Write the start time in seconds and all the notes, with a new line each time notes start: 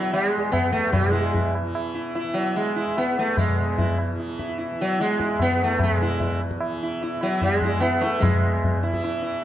Already playing: E2 B2 E3 F#3
0.13 G3, tabla na
0.28 G#3
0.37 E2
0.52 B3, tabla na, tabla ge
0.72 A3, tabla ge
0.92 G#3, tabla na, tabla ge
0.98 B2
1.11 E4
1.33 E4, tabla tin, tabla ge
1.55 tabla na
1.60 E3
1.75 tabla na
1.95 E4
2.15 E4, tabla tin
2.24 E3
2.34 F#3
2.56 G#3, tabla na
2.76 E4
2.87 E2
2.97 B3, tabla na
3.19 A3
3.37 G#3, tabla na, tabla ge
3.48 B2
3.78 E4, tabla tin, tabla ge
3.98 tabla na
4.10 E3
4.20 tabla te
4.29 tabla te
4.39 E4, tabla ke
4.49 tabla te
4.58 E4, tabla tin
4.72 E3
4.81 F#3
5.00 G#3, tabla te
5.10 tabla te
5.20 E4, tabla ke
5.29 tabla te
5.35 E2
5.39 B3, tabla na, tabla ge
5.60 A3, tabla te
5.79 G#3, tabla na, tabla ge
5.95 B2
6.02 E4
6.20 E4, tabla tin, tabla ge
6.40 tabla na
6.51 tabla ke
6.56 E3
6.60 tabla na
6.83 E4
7.01 E4, tabla tin
7.17 E3
7.21 F#3 E4, tabla na
7.41 G#3, tabla na, tabla ge
7.61 E4, tabla ge
7.78 E2 B3 E4, tabla na
8.01 A3 E4
8.20 B2 G#3, tabla na, tabla ge
8.64 tabla tin, tabla ge
8.83 E3 E4, tabla na
8.94 tabla ke
9.04 E4, tabla na
9.22 E4